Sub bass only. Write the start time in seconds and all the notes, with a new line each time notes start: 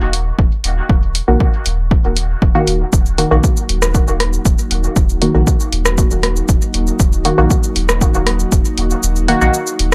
0.01 D#1
0.39 D#1
0.64 D#1
0.89 D#1
1.28 A#1
1.66 D#1
2.04 D#1
2.42 D#1
2.67 D#1
2.93 D#1
3.31 A#1
3.69 D#1
4.07 D#1
4.45 D#1
4.71 D#1
4.96 D#1
5.35 A#1
5.72 D#1
6.11 D#1
6.49 D#1
6.74 D#1
7.00 D#1
7.38 A#1
7.76 D#1
8.14 D#1
8.52 D#1
8.78 D#1
9.03 D#1
9.41 A#1
9.79 D#1